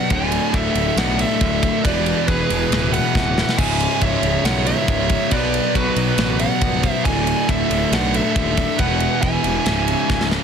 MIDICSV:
0, 0, Header, 1, 9, 480
1, 0, Start_track
1, 0, Tempo, 434153
1, 115, Time_signature, 4, 2, 24, 8
1, 11536, End_track
2, 0, Start_track
2, 0, Title_t, "Lead electric guitar"
2, 0, Program_c, 0, 29
2, 0, Note_on_c, 0, 78, 93
2, 133, Note_off_c, 0, 78, 0
2, 137, Note_on_c, 0, 80, 106
2, 605, Note_on_c, 0, 76, 98
2, 621, Note_off_c, 0, 80, 0
2, 1048, Note_off_c, 0, 76, 0
2, 1085, Note_on_c, 0, 78, 111
2, 1328, Note_on_c, 0, 76, 97
2, 1329, Note_off_c, 0, 78, 0
2, 2000, Note_off_c, 0, 76, 0
2, 2047, Note_on_c, 0, 74, 105
2, 2519, Note_on_c, 0, 71, 90
2, 2538, Note_off_c, 0, 74, 0
2, 3235, Note_on_c, 0, 78, 95
2, 3262, Note_off_c, 0, 71, 0
2, 3963, Note_off_c, 0, 78, 0
2, 3968, Note_on_c, 0, 80, 108
2, 4412, Note_off_c, 0, 80, 0
2, 4451, Note_on_c, 0, 76, 96
2, 4915, Note_on_c, 0, 78, 101
2, 4941, Note_off_c, 0, 76, 0
2, 5142, Note_off_c, 0, 78, 0
2, 5158, Note_on_c, 0, 76, 97
2, 5882, Note_off_c, 0, 76, 0
2, 5886, Note_on_c, 0, 74, 98
2, 6369, Note_on_c, 0, 71, 88
2, 6379, Note_off_c, 0, 74, 0
2, 7073, Note_on_c, 0, 78, 94
2, 7107, Note_off_c, 0, 71, 0
2, 7637, Note_off_c, 0, 78, 0
2, 7637, Note_on_c, 0, 76, 94
2, 7787, Note_off_c, 0, 76, 0
2, 7791, Note_on_c, 0, 80, 104
2, 8286, Note_on_c, 0, 76, 95
2, 8290, Note_off_c, 0, 80, 0
2, 8774, Note_on_c, 0, 78, 102
2, 8777, Note_off_c, 0, 76, 0
2, 9014, Note_off_c, 0, 78, 0
2, 9019, Note_on_c, 0, 76, 92
2, 9728, Note_on_c, 0, 78, 108
2, 9750, Note_off_c, 0, 76, 0
2, 10187, Note_off_c, 0, 78, 0
2, 10192, Note_on_c, 0, 80, 83
2, 11350, Note_off_c, 0, 80, 0
2, 11536, End_track
3, 0, Start_track
3, 0, Title_t, "Lead electric guitar"
3, 0, Program_c, 1, 29
3, 125, Note_on_c, 1, 74, 92
3, 568, Note_off_c, 1, 74, 0
3, 603, Note_on_c, 1, 69, 88
3, 1047, Note_off_c, 1, 69, 0
3, 1089, Note_on_c, 1, 74, 97
3, 1307, Note_off_c, 1, 74, 0
3, 1321, Note_on_c, 1, 69, 89
3, 1996, Note_off_c, 1, 69, 0
3, 2030, Note_on_c, 1, 71, 85
3, 2481, Note_off_c, 1, 71, 0
3, 2532, Note_on_c, 1, 68, 77
3, 3203, Note_off_c, 1, 68, 0
3, 3256, Note_on_c, 1, 71, 90
3, 3925, Note_off_c, 1, 71, 0
3, 3982, Note_on_c, 1, 76, 86
3, 4419, Note_off_c, 1, 76, 0
3, 4467, Note_on_c, 1, 73, 76
3, 4902, Note_off_c, 1, 73, 0
3, 4945, Note_on_c, 1, 73, 87
3, 5158, Note_off_c, 1, 73, 0
3, 5182, Note_on_c, 1, 73, 82
3, 5848, Note_off_c, 1, 73, 0
3, 5897, Note_on_c, 1, 71, 88
3, 6337, Note_off_c, 1, 71, 0
3, 6363, Note_on_c, 1, 66, 74
3, 7038, Note_off_c, 1, 66, 0
3, 7098, Note_on_c, 1, 74, 83
3, 7607, Note_off_c, 1, 74, 0
3, 7607, Note_on_c, 1, 72, 83
3, 7766, Note_off_c, 1, 72, 0
3, 7810, Note_on_c, 1, 74, 96
3, 8252, Note_off_c, 1, 74, 0
3, 8292, Note_on_c, 1, 69, 81
3, 8733, Note_off_c, 1, 69, 0
3, 8763, Note_on_c, 1, 74, 82
3, 8985, Note_off_c, 1, 74, 0
3, 9014, Note_on_c, 1, 69, 83
3, 9682, Note_off_c, 1, 69, 0
3, 9703, Note_on_c, 1, 71, 88
3, 10157, Note_off_c, 1, 71, 0
3, 10197, Note_on_c, 1, 76, 74
3, 11353, Note_off_c, 1, 76, 0
3, 11536, End_track
4, 0, Start_track
4, 0, Title_t, "String section"
4, 0, Program_c, 2, 48
4, 0, Note_on_c, 2, 66, 74
4, 108, Note_on_c, 2, 64, 76
4, 113, Note_on_c, 2, 50, 80
4, 113, Note_on_c, 2, 57, 78
4, 2016, Note_off_c, 2, 64, 0
4, 2018, Note_off_c, 2, 50, 0
4, 2019, Note_off_c, 2, 57, 0
4, 2042, Note_on_c, 2, 52, 81
4, 2045, Note_on_c, 2, 68, 86
4, 2048, Note_on_c, 2, 59, 76
4, 3927, Note_off_c, 2, 66, 0
4, 3944, Note_off_c, 2, 52, 0
4, 3945, Note_off_c, 2, 68, 0
4, 3947, Note_off_c, 2, 59, 0
4, 3970, Note_on_c, 2, 56, 79
4, 3972, Note_on_c, 2, 61, 76
4, 3973, Note_on_c, 2, 64, 88
4, 3977, Note_on_c, 2, 49, 82
4, 5868, Note_off_c, 2, 56, 0
4, 5869, Note_off_c, 2, 61, 0
4, 5869, Note_off_c, 2, 64, 0
4, 5871, Note_off_c, 2, 49, 0
4, 5889, Note_on_c, 2, 74, 91
4, 5895, Note_on_c, 2, 71, 71
4, 5899, Note_on_c, 2, 59, 83
4, 5900, Note_on_c, 2, 66, 76
4, 7786, Note_off_c, 2, 74, 0
4, 7789, Note_off_c, 2, 71, 0
4, 7791, Note_off_c, 2, 59, 0
4, 7805, Note_on_c, 2, 64, 77
4, 7813, Note_on_c, 2, 50, 80
4, 7815, Note_on_c, 2, 57, 75
4, 9690, Note_off_c, 2, 66, 0
4, 9702, Note_off_c, 2, 64, 0
4, 9706, Note_off_c, 2, 50, 0
4, 9707, Note_off_c, 2, 57, 0
4, 9737, Note_on_c, 2, 59, 66
4, 9737, Note_on_c, 2, 68, 77
4, 9739, Note_on_c, 2, 52, 76
4, 9741, Note_on_c, 2, 66, 71
4, 10669, Note_on_c, 2, 49, 73
4, 10675, Note_on_c, 2, 56, 73
4, 10676, Note_on_c, 2, 64, 76
4, 10678, Note_off_c, 2, 59, 0
4, 10678, Note_off_c, 2, 68, 0
4, 10678, Note_on_c, 2, 61, 73
4, 10679, Note_off_c, 2, 52, 0
4, 10680, Note_off_c, 2, 66, 0
4, 11536, Note_off_c, 2, 49, 0
4, 11536, Note_off_c, 2, 56, 0
4, 11536, Note_off_c, 2, 61, 0
4, 11536, Note_off_c, 2, 64, 0
4, 11536, End_track
5, 0, Start_track
5, 0, Title_t, "Distorted electric guitar"
5, 0, Program_c, 3, 30
5, 0, Note_on_c, 3, 59, 100
5, 122, Note_off_c, 3, 59, 0
5, 11536, End_track
6, 0, Start_track
6, 0, Title_t, "Distorted electric guitar"
6, 0, Program_c, 4, 30
6, 98, Note_on_c, 4, 38, 99
6, 113, Note_on_c, 4, 45, 96
6, 129, Note_on_c, 4, 50, 114
6, 812, Note_off_c, 4, 50, 0
6, 813, Note_off_c, 4, 38, 0
6, 821, Note_off_c, 4, 45, 0
6, 825, Note_on_c, 4, 50, 100
6, 839, Note_on_c, 4, 45, 83
6, 852, Note_on_c, 4, 38, 75
6, 1538, Note_off_c, 4, 50, 0
6, 1539, Note_off_c, 4, 38, 0
6, 1545, Note_off_c, 4, 45, 0
6, 1552, Note_on_c, 4, 38, 87
6, 1565, Note_on_c, 4, 45, 86
6, 1577, Note_on_c, 4, 50, 92
6, 2021, Note_off_c, 4, 38, 0
6, 2028, Note_off_c, 4, 45, 0
6, 2032, Note_on_c, 4, 40, 93
6, 2034, Note_off_c, 4, 50, 0
6, 2043, Note_on_c, 4, 47, 98
6, 2058, Note_on_c, 4, 52, 111
6, 2742, Note_off_c, 4, 40, 0
6, 2742, Note_off_c, 4, 52, 0
6, 2746, Note_on_c, 4, 52, 90
6, 2748, Note_off_c, 4, 47, 0
6, 2765, Note_on_c, 4, 47, 82
6, 2774, Note_on_c, 4, 40, 78
6, 3459, Note_off_c, 4, 40, 0
6, 3460, Note_off_c, 4, 52, 0
6, 3469, Note_off_c, 4, 47, 0
6, 3472, Note_on_c, 4, 40, 82
6, 3482, Note_on_c, 4, 47, 93
6, 3500, Note_on_c, 4, 52, 90
6, 3935, Note_off_c, 4, 40, 0
6, 3939, Note_on_c, 4, 37, 87
6, 3947, Note_off_c, 4, 47, 0
6, 3956, Note_off_c, 4, 52, 0
6, 3957, Note_on_c, 4, 44, 103
6, 3969, Note_on_c, 4, 49, 97
6, 4651, Note_off_c, 4, 49, 0
6, 4657, Note_off_c, 4, 37, 0
6, 4664, Note_on_c, 4, 49, 87
6, 4665, Note_off_c, 4, 44, 0
6, 4685, Note_on_c, 4, 44, 84
6, 4692, Note_on_c, 4, 37, 82
6, 5379, Note_off_c, 4, 49, 0
6, 5382, Note_off_c, 4, 37, 0
6, 5389, Note_off_c, 4, 44, 0
6, 5395, Note_on_c, 4, 37, 83
6, 5409, Note_on_c, 4, 44, 92
6, 5424, Note_on_c, 4, 49, 92
6, 5865, Note_off_c, 4, 37, 0
6, 5870, Note_on_c, 4, 47, 86
6, 5872, Note_off_c, 4, 44, 0
6, 5879, Note_off_c, 4, 49, 0
6, 5885, Note_on_c, 4, 54, 96
6, 5896, Note_on_c, 4, 59, 105
6, 6578, Note_off_c, 4, 59, 0
6, 6582, Note_off_c, 4, 47, 0
6, 6591, Note_on_c, 4, 59, 84
6, 6599, Note_off_c, 4, 54, 0
6, 6603, Note_on_c, 4, 54, 85
6, 6622, Note_on_c, 4, 47, 88
6, 7297, Note_off_c, 4, 47, 0
6, 7302, Note_off_c, 4, 59, 0
6, 7308, Note_off_c, 4, 54, 0
6, 7310, Note_on_c, 4, 47, 79
6, 7327, Note_on_c, 4, 54, 85
6, 7339, Note_on_c, 4, 59, 101
6, 7781, Note_off_c, 4, 47, 0
6, 7790, Note_off_c, 4, 54, 0
6, 7793, Note_on_c, 4, 38, 90
6, 7796, Note_off_c, 4, 59, 0
6, 7805, Note_on_c, 4, 45, 107
6, 7819, Note_on_c, 4, 50, 93
6, 8501, Note_off_c, 4, 50, 0
6, 8502, Note_off_c, 4, 38, 0
6, 8508, Note_off_c, 4, 45, 0
6, 8515, Note_on_c, 4, 50, 99
6, 8530, Note_on_c, 4, 45, 93
6, 8544, Note_on_c, 4, 38, 81
6, 9216, Note_off_c, 4, 38, 0
6, 9223, Note_off_c, 4, 50, 0
6, 9229, Note_on_c, 4, 38, 89
6, 9231, Note_off_c, 4, 45, 0
6, 9247, Note_on_c, 4, 45, 90
6, 9263, Note_on_c, 4, 50, 97
6, 9700, Note_off_c, 4, 38, 0
6, 9706, Note_on_c, 4, 40, 91
6, 9709, Note_off_c, 4, 45, 0
6, 9717, Note_off_c, 4, 50, 0
6, 9721, Note_on_c, 4, 47, 110
6, 9736, Note_on_c, 4, 52, 115
6, 10418, Note_off_c, 4, 40, 0
6, 10425, Note_off_c, 4, 47, 0
6, 10425, Note_off_c, 4, 52, 0
6, 10439, Note_on_c, 4, 52, 94
6, 10453, Note_on_c, 4, 47, 78
6, 10467, Note_on_c, 4, 40, 77
6, 10664, Note_off_c, 4, 52, 0
6, 10671, Note_off_c, 4, 47, 0
6, 10675, Note_off_c, 4, 40, 0
6, 10680, Note_on_c, 4, 37, 90
6, 10694, Note_on_c, 4, 44, 101
6, 10707, Note_on_c, 4, 49, 109
6, 11379, Note_off_c, 4, 49, 0
6, 11384, Note_off_c, 4, 37, 0
6, 11392, Note_off_c, 4, 44, 0
6, 11392, Note_on_c, 4, 49, 94
6, 11407, Note_on_c, 4, 44, 81
6, 11420, Note_on_c, 4, 37, 77
6, 11536, Note_off_c, 4, 37, 0
6, 11536, Note_off_c, 4, 44, 0
6, 11536, Note_off_c, 4, 49, 0
6, 11536, End_track
7, 0, Start_track
7, 0, Title_t, "Distorted electric guitar"
7, 0, Program_c, 5, 30
7, 0, Note_on_c, 5, 59, 89
7, 115, Note_off_c, 5, 59, 0
7, 1076, Note_on_c, 5, 38, 85
7, 1090, Note_on_c, 5, 45, 93
7, 1101, Note_on_c, 5, 50, 92
7, 2024, Note_off_c, 5, 38, 0
7, 2031, Note_off_c, 5, 45, 0
7, 2036, Note_off_c, 5, 50, 0
7, 3010, Note_on_c, 5, 40, 80
7, 3024, Note_on_c, 5, 47, 84
7, 3027, Note_on_c, 5, 52, 90
7, 3952, Note_off_c, 5, 40, 0
7, 3959, Note_off_c, 5, 47, 0
7, 3961, Note_off_c, 5, 52, 0
7, 4915, Note_on_c, 5, 37, 83
7, 4928, Note_on_c, 5, 44, 89
7, 4937, Note_on_c, 5, 49, 90
7, 5862, Note_off_c, 5, 37, 0
7, 5871, Note_off_c, 5, 44, 0
7, 5875, Note_off_c, 5, 49, 0
7, 6838, Note_on_c, 5, 47, 82
7, 6850, Note_on_c, 5, 54, 87
7, 6860, Note_on_c, 5, 59, 100
7, 7785, Note_off_c, 5, 47, 0
7, 7791, Note_off_c, 5, 54, 0
7, 7796, Note_off_c, 5, 59, 0
7, 8767, Note_on_c, 5, 38, 81
7, 8786, Note_on_c, 5, 45, 91
7, 8794, Note_on_c, 5, 50, 98
7, 9708, Note_off_c, 5, 38, 0
7, 9718, Note_off_c, 5, 45, 0
7, 9722, Note_off_c, 5, 50, 0
7, 11536, End_track
8, 0, Start_track
8, 0, Title_t, "Picked electric bass"
8, 0, Program_c, 6, 34
8, 113, Note_on_c, 6, 26, 92
8, 414, Note_off_c, 6, 26, 0
8, 592, Note_on_c, 6, 26, 84
8, 743, Note_off_c, 6, 26, 0
8, 830, Note_on_c, 6, 26, 102
8, 982, Note_off_c, 6, 26, 0
8, 1064, Note_on_c, 6, 35, 95
8, 1368, Note_off_c, 6, 35, 0
8, 1557, Note_on_c, 6, 26, 95
8, 1857, Note_off_c, 6, 26, 0
8, 2042, Note_on_c, 6, 28, 97
8, 2341, Note_off_c, 6, 28, 0
8, 2521, Note_on_c, 6, 28, 91
8, 2670, Note_off_c, 6, 28, 0
8, 2765, Note_on_c, 6, 28, 94
8, 2913, Note_off_c, 6, 28, 0
8, 2992, Note_on_c, 6, 26, 94
8, 3294, Note_off_c, 6, 26, 0
8, 3479, Note_on_c, 6, 26, 92
8, 3779, Note_off_c, 6, 26, 0
8, 3960, Note_on_c, 6, 25, 100
8, 4260, Note_off_c, 6, 25, 0
8, 4440, Note_on_c, 6, 25, 89
8, 4591, Note_off_c, 6, 25, 0
8, 4669, Note_on_c, 6, 25, 100
8, 4823, Note_off_c, 6, 25, 0
8, 4905, Note_on_c, 6, 35, 96
8, 5210, Note_off_c, 6, 35, 0
8, 5395, Note_on_c, 6, 25, 89
8, 5696, Note_off_c, 6, 25, 0
8, 5876, Note_on_c, 6, 35, 92
8, 6177, Note_off_c, 6, 35, 0
8, 6356, Note_on_c, 6, 35, 89
8, 6508, Note_off_c, 6, 35, 0
8, 6592, Note_on_c, 6, 35, 100
8, 6745, Note_off_c, 6, 35, 0
8, 6828, Note_on_c, 6, 33, 102
8, 7131, Note_off_c, 6, 33, 0
8, 7311, Note_on_c, 6, 25, 90
8, 7614, Note_off_c, 6, 25, 0
8, 7797, Note_on_c, 6, 26, 98
8, 8098, Note_off_c, 6, 26, 0
8, 8277, Note_on_c, 6, 26, 89
8, 8428, Note_off_c, 6, 26, 0
8, 8513, Note_on_c, 6, 26, 97
8, 8665, Note_off_c, 6, 26, 0
8, 8751, Note_on_c, 6, 35, 96
8, 9053, Note_off_c, 6, 35, 0
8, 9237, Note_on_c, 6, 27, 90
8, 9537, Note_off_c, 6, 27, 0
8, 9719, Note_on_c, 6, 28, 95
8, 10018, Note_off_c, 6, 28, 0
8, 10199, Note_on_c, 6, 28, 96
8, 10348, Note_off_c, 6, 28, 0
8, 10436, Note_on_c, 6, 28, 98
8, 10586, Note_off_c, 6, 28, 0
8, 10680, Note_on_c, 6, 25, 93
8, 10979, Note_off_c, 6, 25, 0
8, 11161, Note_on_c, 6, 25, 94
8, 11459, Note_off_c, 6, 25, 0
8, 11536, End_track
9, 0, Start_track
9, 0, Title_t, "Drums"
9, 112, Note_on_c, 9, 51, 123
9, 117, Note_on_c, 9, 36, 123
9, 222, Note_off_c, 9, 51, 0
9, 227, Note_off_c, 9, 36, 0
9, 351, Note_on_c, 9, 51, 82
9, 462, Note_off_c, 9, 51, 0
9, 594, Note_on_c, 9, 51, 101
9, 596, Note_on_c, 9, 36, 86
9, 705, Note_off_c, 9, 51, 0
9, 706, Note_off_c, 9, 36, 0
9, 833, Note_on_c, 9, 51, 83
9, 944, Note_off_c, 9, 51, 0
9, 1077, Note_on_c, 9, 51, 111
9, 1085, Note_on_c, 9, 38, 127
9, 1187, Note_off_c, 9, 51, 0
9, 1196, Note_off_c, 9, 38, 0
9, 1317, Note_on_c, 9, 51, 80
9, 1427, Note_off_c, 9, 51, 0
9, 1556, Note_on_c, 9, 51, 104
9, 1560, Note_on_c, 9, 36, 91
9, 1666, Note_off_c, 9, 51, 0
9, 1671, Note_off_c, 9, 36, 0
9, 1800, Note_on_c, 9, 36, 93
9, 1803, Note_on_c, 9, 51, 74
9, 1911, Note_off_c, 9, 36, 0
9, 1913, Note_off_c, 9, 51, 0
9, 2042, Note_on_c, 9, 36, 120
9, 2044, Note_on_c, 9, 51, 112
9, 2153, Note_off_c, 9, 36, 0
9, 2155, Note_off_c, 9, 51, 0
9, 2279, Note_on_c, 9, 51, 70
9, 2390, Note_off_c, 9, 51, 0
9, 2520, Note_on_c, 9, 51, 96
9, 2522, Note_on_c, 9, 36, 81
9, 2631, Note_off_c, 9, 51, 0
9, 2633, Note_off_c, 9, 36, 0
9, 2768, Note_on_c, 9, 51, 84
9, 2878, Note_off_c, 9, 51, 0
9, 3008, Note_on_c, 9, 51, 116
9, 3017, Note_on_c, 9, 38, 121
9, 3118, Note_off_c, 9, 51, 0
9, 3127, Note_off_c, 9, 38, 0
9, 3247, Note_on_c, 9, 51, 91
9, 3357, Note_off_c, 9, 51, 0
9, 3484, Note_on_c, 9, 36, 86
9, 3497, Note_on_c, 9, 38, 68
9, 3595, Note_off_c, 9, 36, 0
9, 3608, Note_off_c, 9, 38, 0
9, 3735, Note_on_c, 9, 38, 91
9, 3846, Note_off_c, 9, 38, 0
9, 3856, Note_on_c, 9, 38, 109
9, 3963, Note_on_c, 9, 36, 127
9, 3963, Note_on_c, 9, 49, 119
9, 3967, Note_off_c, 9, 38, 0
9, 4074, Note_off_c, 9, 36, 0
9, 4074, Note_off_c, 9, 49, 0
9, 4206, Note_on_c, 9, 51, 80
9, 4316, Note_off_c, 9, 51, 0
9, 4437, Note_on_c, 9, 51, 101
9, 4441, Note_on_c, 9, 36, 86
9, 4548, Note_off_c, 9, 51, 0
9, 4552, Note_off_c, 9, 36, 0
9, 4676, Note_on_c, 9, 51, 89
9, 4786, Note_off_c, 9, 51, 0
9, 4921, Note_on_c, 9, 51, 116
9, 4930, Note_on_c, 9, 38, 112
9, 5031, Note_off_c, 9, 51, 0
9, 5040, Note_off_c, 9, 38, 0
9, 5158, Note_on_c, 9, 51, 82
9, 5268, Note_off_c, 9, 51, 0
9, 5397, Note_on_c, 9, 51, 105
9, 5398, Note_on_c, 9, 36, 91
9, 5507, Note_off_c, 9, 51, 0
9, 5509, Note_off_c, 9, 36, 0
9, 5632, Note_on_c, 9, 51, 77
9, 5637, Note_on_c, 9, 36, 92
9, 5743, Note_off_c, 9, 51, 0
9, 5748, Note_off_c, 9, 36, 0
9, 5872, Note_on_c, 9, 51, 118
9, 5878, Note_on_c, 9, 36, 116
9, 5983, Note_off_c, 9, 51, 0
9, 5988, Note_off_c, 9, 36, 0
9, 6122, Note_on_c, 9, 51, 74
9, 6233, Note_off_c, 9, 51, 0
9, 6360, Note_on_c, 9, 36, 89
9, 6364, Note_on_c, 9, 51, 93
9, 6471, Note_off_c, 9, 36, 0
9, 6474, Note_off_c, 9, 51, 0
9, 6594, Note_on_c, 9, 51, 82
9, 6704, Note_off_c, 9, 51, 0
9, 6831, Note_on_c, 9, 51, 111
9, 6840, Note_on_c, 9, 38, 121
9, 6942, Note_off_c, 9, 51, 0
9, 6951, Note_off_c, 9, 38, 0
9, 7069, Note_on_c, 9, 51, 83
9, 7179, Note_off_c, 9, 51, 0
9, 7312, Note_on_c, 9, 51, 108
9, 7316, Note_on_c, 9, 36, 90
9, 7422, Note_off_c, 9, 51, 0
9, 7427, Note_off_c, 9, 36, 0
9, 7555, Note_on_c, 9, 51, 82
9, 7558, Note_on_c, 9, 36, 90
9, 7665, Note_off_c, 9, 51, 0
9, 7668, Note_off_c, 9, 36, 0
9, 7798, Note_on_c, 9, 36, 127
9, 7799, Note_on_c, 9, 51, 122
9, 7909, Note_off_c, 9, 36, 0
9, 7909, Note_off_c, 9, 51, 0
9, 8037, Note_on_c, 9, 51, 80
9, 8148, Note_off_c, 9, 51, 0
9, 8280, Note_on_c, 9, 36, 89
9, 8281, Note_on_c, 9, 51, 105
9, 8390, Note_off_c, 9, 36, 0
9, 8391, Note_off_c, 9, 51, 0
9, 8521, Note_on_c, 9, 51, 86
9, 8631, Note_off_c, 9, 51, 0
9, 8762, Note_on_c, 9, 51, 114
9, 8771, Note_on_c, 9, 38, 124
9, 8873, Note_off_c, 9, 51, 0
9, 8882, Note_off_c, 9, 38, 0
9, 9003, Note_on_c, 9, 51, 90
9, 9113, Note_off_c, 9, 51, 0
9, 9241, Note_on_c, 9, 51, 105
9, 9242, Note_on_c, 9, 36, 95
9, 9352, Note_off_c, 9, 36, 0
9, 9352, Note_off_c, 9, 51, 0
9, 9478, Note_on_c, 9, 51, 82
9, 9481, Note_on_c, 9, 36, 95
9, 9589, Note_off_c, 9, 51, 0
9, 9591, Note_off_c, 9, 36, 0
9, 9715, Note_on_c, 9, 51, 109
9, 9719, Note_on_c, 9, 36, 120
9, 9825, Note_off_c, 9, 51, 0
9, 9830, Note_off_c, 9, 36, 0
9, 9954, Note_on_c, 9, 51, 76
9, 10064, Note_off_c, 9, 51, 0
9, 10199, Note_on_c, 9, 51, 98
9, 10202, Note_on_c, 9, 36, 86
9, 10310, Note_off_c, 9, 51, 0
9, 10313, Note_off_c, 9, 36, 0
9, 10438, Note_on_c, 9, 51, 75
9, 10549, Note_off_c, 9, 51, 0
9, 10677, Note_on_c, 9, 51, 101
9, 10686, Note_on_c, 9, 38, 123
9, 10787, Note_off_c, 9, 51, 0
9, 10796, Note_off_c, 9, 38, 0
9, 10920, Note_on_c, 9, 51, 78
9, 11031, Note_off_c, 9, 51, 0
9, 11163, Note_on_c, 9, 36, 94
9, 11167, Note_on_c, 9, 38, 68
9, 11274, Note_off_c, 9, 36, 0
9, 11277, Note_off_c, 9, 38, 0
9, 11289, Note_on_c, 9, 38, 78
9, 11399, Note_off_c, 9, 38, 0
9, 11403, Note_on_c, 9, 38, 95
9, 11514, Note_off_c, 9, 38, 0
9, 11536, End_track
0, 0, End_of_file